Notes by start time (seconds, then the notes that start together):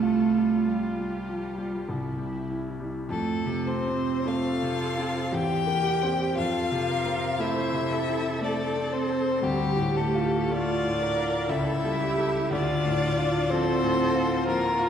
Already playing: C2 G3 A3 F4 A4
0.02 F4
0.35 G3
0.67 G3 F4 G4
0.98 G3
1.29 F3
1.58 G3
1.89 C2 E4
2.18 G3
2.50 E4
2.80 G3
3.08 F2 A3 A4
3.46 C3
3.67 C4 C5
3.87 C4
4.25 A3 F4 A4 F5
4.62 C3
4.98 C4
5.31 E2 G4 G5
5.67 A#3
6.02 C4 C5
6.36 F2 F4 A4 F5
6.72 C3
6.89 A#4
7.05 C4
7.39 A3 E4 C5 E5
7.73 C3
7.92 A4
8.09 C4
8.40 A3 D4 D5
8.76 C4
8.92 C4 C5
9.10 C5
9.42 D2 G3 G4
9.76 A2
9.96 A3 A4
10.15 F4
10.50 A3 D4 F4 D5
10.84 A2
11.01 A#4
11.17 F4
11.48 C#2 E4 A4 E5
11.84 G3
12.01 G4
12.18 E4 A4
12.51 D2 D4 F4 D5
12.86 A2
13.18 F4
13.50 F3 C4 A4 C5
13.83 A2
14.15 F4
14.46 F3 A#3 F4 A#4
14.79 F4